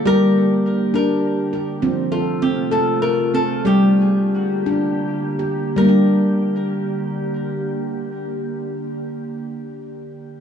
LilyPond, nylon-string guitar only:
\new Staff \with { instrumentName = "Nylon-string guitar" } { \time 6/8 \key g \minor \tempo 4. = 58 bes'4. bes'4 r8 | r8 f'8 g'8 a'8 bes'8 a'8 | g'2 r4 | bes'2.~ |
bes'2. | }